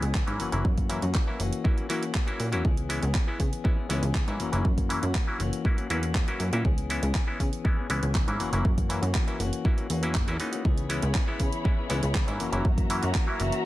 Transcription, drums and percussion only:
0.03 closed hi-hat medium
0.15 kick loud
0.15 clap loud
0.28 closed hi-hat soft
0.40 open hi-hat loud
0.52 closed hi-hat medium
0.65 kick loud
0.78 kick medium
0.78 closed hi-hat soft
0.90 open hi-hat loud
1.02 closed hi-hat medium
1.14 kick loud
1.14 clap loud
1.40 open hi-hat loud
1.53 closed hi-hat medium
1.65 kick loud
1.78 closed hi-hat soft
1.90 open hi-hat loud
2.03 closed hi-hat medium
2.14 kick loud
2.14 clap loud
2.28 closed hi-hat soft
2.40 open hi-hat loud
2.53 closed hi-hat medium
2.65 kick loud
2.77 closed hi-hat soft
2.90 open hi-hat loud
3.03 closed hi-hat medium
3.15 kick loud
3.15 clap loud
3.40 kick medium
3.40 open hi-hat loud
3.53 closed hi-hat medium
3.65 kick loud
3.90 open hi-hat loud
4.03 closed hi-hat medium
4.15 kick loud
4.15 clap loud
4.28 closed hi-hat soft
4.40 open hi-hat loud
4.53 closed hi-hat medium
4.65 kick loud
4.78 kick medium
4.78 closed hi-hat soft
4.90 open hi-hat loud
5.03 closed hi-hat medium
5.15 kick loud
5.15 clap loud
5.40 open hi-hat loud
5.53 closed hi-hat medium
5.65 kick loud
5.78 closed hi-hat soft
5.90 open hi-hat loud
6.03 closed hi-hat medium
6.15 kick loud
6.15 clap loud
6.28 closed hi-hat medium
6.40 open hi-hat loud
6.53 closed hi-hat medium
6.65 kick loud
6.78 closed hi-hat medium
6.90 open hi-hat medium
7.03 closed hi-hat medium
7.15 kick loud
7.15 clap loud
7.40 kick medium
7.40 open hi-hat loud
7.53 closed hi-hat medium
7.65 kick loud
7.90 open hi-hat loud
8.03 closed hi-hat medium
8.15 kick loud
8.15 clap loud
8.28 closed hi-hat medium
8.40 open hi-hat medium
8.53 closed hi-hat medium
8.65 kick loud
8.78 kick medium
8.78 closed hi-hat medium
8.90 open hi-hat medium
9.03 closed hi-hat medium
9.15 kick loud
9.15 clap loud
9.28 closed hi-hat soft
9.40 open hi-hat loud
9.53 closed hi-hat medium
9.65 kick loud
9.78 closed hi-hat soft
9.90 open hi-hat loud
10.03 closed hi-hat medium
10.15 kick loud
10.15 clap loud
10.28 closed hi-hat medium
10.40 open hi-hat loud
10.53 closed hi-hat medium
10.65 kick loud
10.78 closed hi-hat medium
10.90 open hi-hat loud
11.02 closed hi-hat medium
11.14 kick loud
11.14 clap loud
11.40 kick medium
11.40 open hi-hat loud
11.53 closed hi-hat medium
11.65 kick loud
11.90 open hi-hat loud
12.03 closed hi-hat medium
12.15 kick loud
12.15 clap loud
12.28 closed hi-hat medium
12.40 open hi-hat loud
12.53 closed hi-hat medium
12.65 kick loud
12.78 kick medium
12.78 closed hi-hat medium
12.90 open hi-hat loud
13.03 closed hi-hat medium
13.14 kick loud
13.14 clap loud
13.40 open hi-hat loud
13.52 closed hi-hat medium

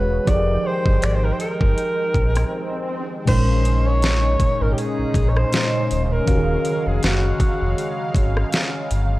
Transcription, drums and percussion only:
0.27 kick loud
0.27 closed hi-hat medium
0.86 kick loud
1.02 finger snap loud
1.02 closed hi-hat medium
1.40 closed hi-hat medium
1.61 kick loud
1.78 closed hi-hat medium
2.14 kick medium
2.14 closed hi-hat soft
2.35 cross-stick medium
2.35 closed hi-hat medium
3.27 kick loud
3.27 closed hi-hat medium
3.27 crash loud
3.65 closed hi-hat medium
4.02 snare loud
4.02 closed hi-hat medium
4.40 kick medium
4.40 closed hi-hat medium
4.78 closed hi-hat medium
5.14 kick medium
5.14 closed hi-hat medium
5.37 cross-stick medium
5.52 snare loud
5.52 closed hi-hat medium
5.91 closed hi-hat medium
6.27 kick loud
6.27 closed hi-hat medium
6.65 closed hi-hat medium
7.03 snare loud
7.03 closed hi-hat medium
7.40 kick medium
7.40 closed hi-hat medium
7.78 closed hi-hat medium
8.15 kick medium
8.15 closed hi-hat medium
8.37 cross-stick medium
8.53 snare loud
8.53 closed hi-hat medium
8.91 closed hi-hat medium

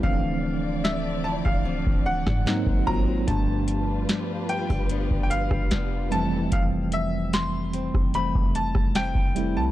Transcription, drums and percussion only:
0.03 kick loud
0.85 snare loud
1.45 kick medium
1.45 cross-stick medium
1.86 kick loud
2.26 kick loud
2.26 cross-stick medium
2.26 snare medium
2.47 snare loud
2.66 kick loud
2.87 kick medium
3.28 kick loud
3.28 closed hi-hat medium
3.68 closed hi-hat medium
4.09 snare loud
4.09 closed hi-hat medium
4.49 closed hi-hat medium
4.70 kick medium
4.70 cross-stick medium
4.89 closed hi-hat medium
5.11 kick loud
5.31 closed hi-hat medium
5.51 kick loud
5.51 cross-stick medium
5.71 snare loud
5.71 closed hi-hat medium
6.12 closed hi-hat medium
6.52 kick loud
6.52 closed hi-hat medium
6.92 closed hi-hat medium
7.33 snare loud
7.33 closed hi-hat medium
7.73 closed hi-hat medium
7.94 kick loud
7.94 cross-stick medium
8.14 closed hi-hat medium
8.35 kick loud
8.55 closed hi-hat medium
8.75 kick loud
8.75 cross-stick medium
8.95 snare loud
8.95 closed hi-hat medium
9.15 kick medium
9.36 closed hi-hat medium

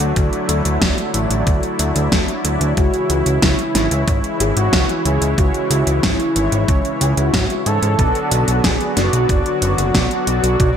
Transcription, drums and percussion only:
0.00 closed hi-hat medium
0.16 kick loud
0.16 closed hi-hat soft
0.33 closed hi-hat soft
0.49 closed hi-hat medium
0.65 closed hi-hat soft
0.82 kick loud
0.82 snare loud
0.82 closed hi-hat medium
0.98 closed hi-hat soft
1.14 closed hi-hat medium
1.31 closed hi-hat medium
1.47 kick loud
1.47 closed hi-hat soft
1.63 closed hi-hat soft
1.79 closed hi-hat medium
1.96 closed hi-hat medium
2.12 kick loud
2.12 snare loud
2.12 closed hi-hat medium
2.28 closed hi-hat soft
2.45 closed hi-hat medium
2.61 closed hi-hat soft
2.77 kick loud
2.77 closed hi-hat soft
2.94 closed hi-hat soft
3.10 closed hi-hat medium
3.26 closed hi-hat soft
3.42 kick loud
3.42 snare loud
3.42 closed hi-hat medium
3.59 closed hi-hat soft
3.75 snare medium
3.75 closed hi-hat medium
3.91 closed hi-hat medium
4.08 kick loud
4.08 closed hi-hat soft
4.24 closed hi-hat soft
4.40 closed hi-hat medium
4.57 closed hi-hat soft
4.73 kick loud
4.73 snare loud
4.73 closed hi-hat soft
4.89 closed hi-hat soft
5.05 closed hi-hat medium
5.22 closed hi-hat medium
5.38 kick loud
5.38 closed hi-hat soft
5.54 closed hi-hat soft
5.71 closed hi-hat medium
5.87 closed hi-hat soft
6.03 kick loud
6.03 snare loud
6.03 closed hi-hat soft
6.20 closed hi-hat soft
6.36 closed hi-hat medium
6.52 closed hi-hat soft
6.68 kick loud
6.68 closed hi-hat medium
6.85 closed hi-hat soft
7.01 closed hi-hat medium
7.17 closed hi-hat soft
7.34 kick loud
7.34 snare loud
7.34 closed hi-hat soft
7.50 closed hi-hat soft
7.66 closed hi-hat medium
7.83 closed hi-hat soft
7.99 kick loud
7.99 closed hi-hat soft
8.15 closed hi-hat soft
8.32 closed hi-hat medium
8.48 closed hi-hat soft
8.64 kick loud
8.64 snare loud
8.64 closed hi-hat medium
8.81 closed hi-hat soft
8.97 snare medium
8.97 closed hi-hat medium
9.13 closed hi-hat medium
9.29 kick loud
9.29 closed hi-hat soft
9.46 closed hi-hat soft
9.62 closed hi-hat medium
9.78 closed hi-hat medium
9.94 kick loud
9.94 snare loud
9.94 closed hi-hat soft
10.11 closed hi-hat soft
10.27 closed hi-hat medium
10.44 closed hi-hat medium
10.60 kick loud
10.60 closed hi-hat medium

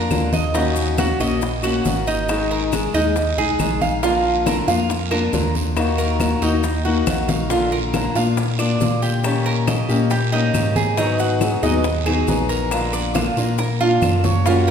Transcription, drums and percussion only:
0.11 high bongo soft
0.11 low bongo medium
0.11 high conga medium
0.11 short guiro medium
0.11 claves medium
0.11 maracas medium
0.33 high conga medium
0.33 short guiro medium
0.33 maracas soft
0.54 high bongo medium
0.54 high conga soft
0.54 long guiro medium
0.54 maracas medium
0.76 high bongo soft
0.76 high conga soft
0.76 maracas medium
0.98 high bongo medium
0.98 high conga loud
0.98 short guiro medium
0.98 claves medium
0.98 maracas medium
1.20 high bongo soft
1.20 high conga soft
1.20 short guiro medium
1.20 maracas soft
1.41 high bongo medium
1.41 high conga soft
1.41 long guiro medium
1.41 maracas medium
1.63 high conga soft
1.63 claves medium
1.63 maracas medium
1.85 high bongo soft
1.85 low bongo medium
1.85 high conga medium
1.85 short guiro medium
1.85 maracas medium
2.07 short guiro medium
2.07 maracas soft
2.29 high bongo medium
2.29 high conga soft
2.29 long guiro medium
2.29 claves medium
2.29 maracas medium
2.51 high bongo soft
2.51 high conga soft
2.72 high bongo medium
2.72 high conga loud
2.72 short guiro medium
2.72 claves medium
2.72 maracas medium
2.94 high bongo soft
2.94 short guiro medium
2.94 maracas soft
3.16 high bongo medium
3.16 high conga soft
3.16 long guiro medium
3.16 maracas medium
3.38 high conga soft
3.59 high bongo soft
3.59 low bongo medium
3.59 high conga medium
3.59 short guiro medium
3.59 claves medium
3.59 maracas medium
3.81 high conga medium
3.81 short guiro medium
3.81 maracas soft
4.03 high bongo medium
4.03 high conga soft
4.03 long guiro medium
4.03 maracas medium
4.25 high bongo soft
4.25 high conga soft
4.46 high bongo medium
4.46 high conga loud
4.46 short guiro medium
4.46 claves medium
4.46 maracas medium
4.68 high bongo soft
4.68 high conga soft
4.68 short guiro medium
4.68 maracas soft
4.90 high bongo medium
4.90 high conga soft
4.90 long guiro medium
4.90 maracas medium
5.12 high conga soft
5.12 claves medium
5.33 high bongo soft
5.33 low bongo medium
5.33 high conga medium
5.33 short guiro medium
5.33 maracas medium
5.55 high conga medium
5.55 short guiro medium
5.55 maracas soft
5.77 high bongo medium
5.77 high conga soft
5.77 long guiro medium
5.77 claves medium
5.77 maracas medium
5.98 high bongo soft
5.98 high conga soft
5.98 maracas medium
6.20 high bongo medium
6.20 high conga medium
6.20 short guiro medium
6.20 claves medium
6.20 maracas medium
6.42 high bongo soft
6.42 short guiro medium
6.42 maracas soft
6.63 high bongo medium
6.63 high conga soft
6.63 long guiro medium
6.63 maracas medium
6.86 high conga soft
7.07 high bongo loud
7.07 high conga loud
7.07 short guiro medium
7.07 claves medium
7.07 maracas medium
7.29 low bongo medium
7.29 high conga medium
7.29 short guiro medium
7.29 maracas soft
7.50 high bongo medium
7.50 high conga soft
7.50 long guiro medium
7.50 maracas medium
7.72 high bongo soft
7.72 high conga soft
7.94 high bongo medium
7.94 high conga loud
7.94 short guiro medium
7.94 claves medium
7.94 maracas medium
8.15 high bongo soft
8.15 high conga soft
8.15 short guiro medium
8.15 maracas soft
8.37 high bongo medium
8.37 high conga soft
8.37 long guiro medium
8.37 maracas medium
8.59 high conga soft
8.59 claves medium
8.59 maracas medium
8.81 high bongo soft
8.81 low bongo medium
8.81 high conga medium
8.81 short guiro medium
8.81 maracas medium
9.03 short guiro medium
9.03 maracas soft
9.24 high bongo medium
9.24 high conga soft
9.24 long guiro medium
9.24 claves medium
9.24 maracas medium
9.46 high bongo soft
9.46 high conga soft
9.68 high bongo medium
9.68 high conga loud
9.68 short guiro medium
9.68 claves medium
9.68 maracas medium
9.89 high bongo soft
9.89 short guiro medium
9.89 maracas soft
10.10 high bongo medium
10.10 high conga soft
10.10 long guiro medium
10.10 maracas medium
10.33 high conga soft
10.54 high bongo soft
10.54 low bongo medium
10.54 high conga medium
10.54 short guiro medium
10.54 claves medium
10.54 maracas medium
10.76 high conga medium
10.76 short guiro medium
10.76 maracas soft
10.97 high bongo medium
10.97 high conga soft
10.97 long guiro medium
10.97 maracas medium
11.19 high bongo soft
11.19 high conga soft
11.19 maracas medium
11.41 high bongo medium
11.41 high conga medium
11.41 short guiro medium
11.41 claves medium
11.41 maracas medium
11.63 high bongo soft
11.63 high conga soft
11.63 short guiro medium
11.63 maracas soft
11.84 high bongo medium
11.84 high conga soft
11.84 long guiro medium
11.84 maracas medium
12.07 high conga soft
12.07 claves medium
12.28 high bongo soft
12.28 low bongo medium
12.28 high conga medium
12.28 short guiro medium
12.28 maracas medium
12.49 short guiro medium
12.49 maracas soft
12.71 high bongo medium
12.71 high conga soft
12.71 long guiro medium
12.71 claves medium
12.71 maracas medium
12.93 high bongo soft
12.93 high conga soft
12.93 maracas medium
13.15 high bongo medium
13.15 high conga medium
13.15 short guiro medium
13.15 claves medium
13.15 maracas medium
13.37 high bongo soft
13.37 short guiro medium
13.37 maracas soft
13.58 high bongo medium
13.58 high conga soft
13.58 long guiro medium
13.58 maracas medium
13.80 high conga soft
14.02 high bongo medium
14.02 high conga medium
14.02 short guiro medium
14.02 claves medium
14.02 maracas medium
14.24 low bongo medium
14.24 high conga medium
14.24 short guiro medium
14.24 maracas soft
14.46 high bongo medium
14.46 high conga soft
14.46 long guiro medium
14.46 maracas medium
14.68 high bongo soft
14.68 high conga soft

